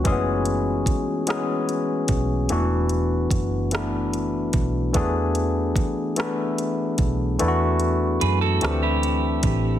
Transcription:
<<
  \new Staff \with { instrumentName = "Clean electric guitar" } { \time 6/8 \key e \mixolydian \tempo 4. = 49 r2. | r2. | r2. | r4 <gis' b'>16 <fis' a'>8 <e' g'>4~ <e' g'>16 | }
  \new Staff \with { instrumentName = "Tine electric piano" } { \time 6/8 \key e \mixolydian <e gis a b cis' gis'>4 r8 <e gis b cis' gis'>4 r8 | <e a b d' fis'>4 r8 <e a b d' e'>4 r8 | <e a b d' gis'>4 r8 <e a b d' e'>4 r8 | <e a b d' e' fis'>4 r8 <e a c' d' g'>4 r8 | }
  \new Staff \with { instrumentName = "Fingered electric bass" } { \clef bass \time 6/8 \key e \mixolydian fis,,4 r4. b,,8 | e,,4 fis,,4. b,,8 | e,4 r4. b,,8 | e,4 fis,8 d,4 a,,8 | }
  \new DrumStaff \with { instrumentName = "Drums" } \drummode { \time 6/8 <hh bd>8 hh8 <hh bd>8 <hh ss>8 hh8 <hh bd>8 | hh8 hh8 <hh bd>8 <hh ss>8 hh8 <hh bd>8 | <hh bd>8 hh8 <hh bd>8 <hh ss>8 hh8 <hh bd>8 | hh8 hh8 hh8 <hh ss>8 hh8 <hh bd>8 | }
>>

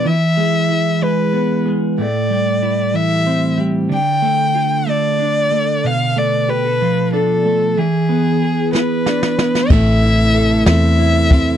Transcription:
<<
  \new Staff \with { instrumentName = "Violin" } { \time 6/8 \key a \minor \tempo 4. = 62 e''4. b'4 r8 | d''4. e''4 r8 | g''4. d''4. | f''8 d''8 b'4 a'4 |
gis'4. b'4. | e''4. e''4. | }
  \new Staff \with { instrumentName = "Clean electric guitar" } { \time 6/8 \key a \minor e8 gis8 e'8 gis8 b8 gis8 | a,8 g8 e'8 e8 c'8 g8 | d8 a8 f'8 a8 d'8 a8 | b,8 a8 g'16 a'16 f8 d'8 a8 |
e8 b8 gis'8 b8 d'8 b8 | a8 e'8 a'8 c'8 e'8 c'8 | }
  \new Staff \with { instrumentName = "Tonewheel organ" } { \clef bass \time 6/8 \key a \minor r2. | r2. | r2. | r2. |
r2. | <c e a e'>2. | }
  \new Staff \with { instrumentName = "Fingered electric bass" } { \clef bass \time 6/8 \key a \minor r2. | r2. | r2. | r2. |
r2. | a,,4. e,4. | }
  \new DrumStaff \with { instrumentName = "Drums" } \drummode { \time 6/8 r4. r4. | r4. r4. | r4. r4. | r4. r4. |
r4. sn8 sn16 sn16 sn16 sn16 | <cymc bd>8 cymr8 cymr8 <cymr sn>8 cymr8 <bd cymr>8 | }
>>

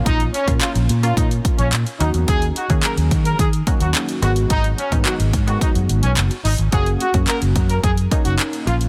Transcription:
<<
  \new Staff \with { instrumentName = "Horn section" } { \time 4/4 \key fis \major \tempo 4 = 108 dis'8 cis'8 eis'16 r8 eis'16 dis'16 r8 cis'16 r8 dis'16 r16 | gis'8 fis'8 ais'16 r8 ais'16 gis'16 r8 fis'16 r8 fis'16 r16 | dis'8 cis'8 fis'16 r8 fis'16 dis'16 r8 cis'16 r8 dis'16 r16 | gis'8 fis'8 ais'16 r8 ais'16 gis'16 r8 fis'16 r8 eis'16 r16 | }
  \new Staff \with { instrumentName = "Analog polysynth" } { \time 4/4 \key fis \major <ais cis' eis'>8 r16 <ais cis' eis'>8. r16 <ais cis' eis'>4. r16 <dis fis ais cis' fis'>8~ | <dis fis ais cis' fis'>8 r16 <dis fis ais cis' gis'>4~ <dis fis ais cis' gis'>16 r8 <dis fis ais cis' fis'>4 <dis fis gis b fis'>8~ | <dis fis gis b fis'>8 r16 <dis fis gis b dis'>8. r16 <dis fis gis b fis'>4. r8. | <ais cis' fis'>8 r16 <ais cis' fis'>4~ <ais cis' fis'>16 r8 <ais cis' dis'>4 <ais cis' eis'>8 | }
  \new Staff \with { instrumentName = "Fingered electric bass" } { \clef bass \time 4/4 \key fis \major ais,,8 r16 ais,16 r16 ais,,16 ais,8 ais,8 r16 ais,,16 ais,16 r16 dis,16 e,16 | dis,8 r16 dis16 r16 dis,16 dis8 dis8 r16 dis,16 r8 gis,,8 | gis,,8 r16 gis,16 r16 gis,,16 gis,8 r16 fis,16 gis,,16 b,,16 fis,,16 r16 gis,,16 gis,,16 | fis,,8 r16 fis,16 r16 fis,,16 fis,8 fis,8 r16 fis,,16 r8 ais,,8 | }
  \new DrumStaff \with { instrumentName = "Drums" } \drummode { \time 4/4 <hh bd>16 hh16 hh16 <hh bd>16 <hc hh>16 hh16 hh16 hh16 <hh bd>16 hh16 <hh bd>16 hh16 <hc hh>16 hh16 hh16 hh16 | <hh bd>16 hh16 hh16 <hh bd>16 <hc hh>16 hh16 <hh bd>16 hh16 <hh bd>16 hh16 <hh bd>16 hh16 <hc hh>16 hh16 hh16 hh16 | <hh bd>16 hh16 hh16 <hh bd>16 <hc hh>16 hh16 <hh bd>16 hh16 <hh bd>16 hh16 hh16 hh16 <hc hh>16 hh16 hho16 hh16 | <hh bd>16 hh16 hh16 <hh bd>16 <hc hh>16 hh16 <hh bd>16 hh16 <hh bd>16 hh16 <hh bd>16 hh16 <hc hh>16 hh16 hh16 hh16 | }
>>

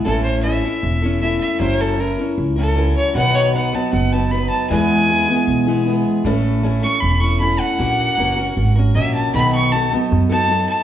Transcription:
<<
  \new Staff \with { instrumentName = "Fiddle" } { \time 4/4 \key a \major \tempo 4 = 155 a'8 c''8 e''2 e''8 e''8 | c''8 a'8 ais'8 r4 a'4 cis''8 | fis''8 cis''8 fis''8 a''8 fis''8 a''8 b''8 a''8 | gis''2. r4 |
r4. cis'''8 b''8 cis'''8 b''8 fis''8~ | fis''2~ fis''8 r8 e''8 a''8 | b''8 cis'''8 a''8 r4 a''4 a''8 | }
  \new Staff \with { instrumentName = "Steel-string acoustic guitar" } { \time 4/4 \key a \major <a, a cis' e' a'>4 <a cis' e' a'>8 <cis' e' a'>4 <cis' e' a'>8 <a cis' e' a'>4 | <fis cis' e' ais'>4 <fis cis' e' ais'>8 <cis' e' ais'>4 <cis' e' ais'>8 <fis cis' e' ais'>4 | <b, dis fis b dis' b'>4 <fis b dis' b'>8 <fis b dis' b'>4 <fis b dis' b'>8 <fis b dis' b'>4 | <e, e gis b e' gis'>4 <gis b e' gis'>8 <gis b e' gis'>4 <gis b e' gis'>8 <gis b e' gis'>4 |
<a, a cis' e' a'>4 <a cis' e' a'>8 <cis' e' a'>4 <cis' e' a'>8 <a cis' e' a'>4 | <ais cis' fis' ais'>4 <ais cis' fis' ais'>8 <cis' fis' ais'>4 <cis' fis' ais'>8 <ais cis' fis' ais'>4 | <b, dis fis b dis' a'>4 <fis b dis' a'>8 <fis b dis' a'>4 <fis b dis' a'>8 <fis b dis' a'>4 | }
  \new Staff \with { instrumentName = "Upright bass" } { \clef bass \time 4/4 \key a \major a,,2 e,,2 | fis,,2 cis,2 | b,,2 fis,,2 | e,2 b,,2 |
a,,2 e,,2 | ais,,4 fis,,4 gis,,4 ais,,4 | b,,2 fis,2 | }
>>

